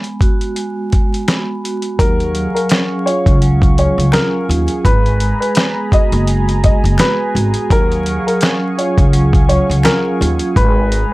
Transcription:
Already playing: vibraphone G#3 B3
0.04 closed hi-hat
0.21 vibraphone F#4, kick, closed hi-hat
0.41 closed hi-hat
0.56 vibraphone G#3, closed hi-hat
0.91 vibraphone G#3, kick, closed hi-hat
1.14 closed hi-hat
1.28 vibraphone B3, snare, closed hi-hat
1.64 vibraphone F#4, closed hi-hat
1.82 closed hi-hat
1.99 upright bass D#2, vibraphone F#3, analog synth pad G#4 F5 G#5 C#6, upright piano A#4, kick, closed hi-hat
2.20 closed hi-hat
2.35 vibraphone F#3, closed hi-hat
2.55 upright piano A#4, closed hi-hat
2.69 vibraphone C#4, finger snap, snare, closed hi-hat
3.06 vibraphone F4, upright piano C#5, closed hi-hat
3.26 upright bass C#2, kick, closed hi-hat
3.42 vibraphone F#3, closed hi-hat
3.62 kick, closed hi-hat
3.78 vibraphone F#3, upright piano C#5, closed hi-hat
3.98 upright bass C#2, closed hi-hat
4.12 vibraphone C#4, upright piano A#4, finger snap, snare, closed hi-hat
4.48 upright bass D#2, vibraphone F4, closed hi-hat
4.68 closed hi-hat
4.84 upright bass G#1, vibraphone G#3, upright piano B4, analog synth pad A#5 B5, kick, closed hi-hat
5.06 closed hi-hat
5.20 vibraphone G#3, closed hi-hat
5.40 upright piano B4, closed hi-hat
5.55 vibraphone B3, finger snap, snare, closed hi-hat
5.92 vibraphone F#4, upright piano D#5, kick, closed hi-hat
6.12 upright bass F#1, closed hi-hat
6.27 vibraphone G#3, closed hi-hat
6.49 closed hi-hat
6.63 vibraphone G#3, upright piano D#5, kick, closed hi-hat
6.84 upright bass F#1, closed hi-hat
6.98 vibraphone B3, upright piano B4, finger snap, snare, closed hi-hat
7.35 upright bass G#1, vibraphone F#4, closed hi-hat
7.54 closed hi-hat
7.70 upright bass D#2, vibraphone F#3, upright piano A#4, analog synth pad F5 C#6, kick, closed hi-hat
7.92 closed hi-hat
8.06 vibraphone F#3, closed hi-hat
8.27 upright piano A#4, closed hi-hat
8.41 vibraphone C#4, finger snap, snare, closed hi-hat
8.77 vibraphone F4, upright piano C#5, closed hi-hat
8.98 upright bass C#2, kick, closed hi-hat
9.13 vibraphone F#3, closed hi-hat
9.33 kick, closed hi-hat
9.49 vibraphone F#3, upright piano C#5, closed hi-hat
9.70 upright bass C#2, closed hi-hat
9.83 vibraphone C#4, upright piano A#4, finger snap, snare, closed hi-hat
10.20 upright bass D#2, vibraphone F4, closed hi-hat
10.39 closed hi-hat
10.56 upright bass G#1, vibraphone G#3, analog synth pad G#4 B4 A#5, upright piano B4, kick, closed hi-hat
10.92 vibraphone G#3, closed hi-hat

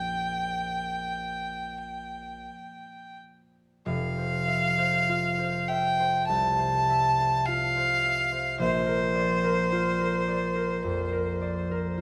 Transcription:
Already playing: harp A#1 C#4 F4 A#4 F5, violin G5
3.86 harp F1, violin F5
4.17 harp C5
4.48 harp E5
4.78 harp C5
5.09 harp F4
5.39 harp C5
5.68 harp E5, violin G5
6.00 harp C5
6.27 harp C2, violin A5
6.59 harp C5
6.90 harp E5
7.20 harp C5
7.46 harp F4, violin F5
7.77 harp C5
8.04 harp E5
8.32 harp C5
8.59 harp A#1, violin C5
8.86 harp A#4
9.15 harp D5
9.44 harp A#4
9.72 harp F4
10.01 harp A#4
10.28 harp D5
10.56 harp A#4
10.84 harp F2
11.12 harp A#4
11.42 harp D5
11.71 harp A#4
11.98 harp F4

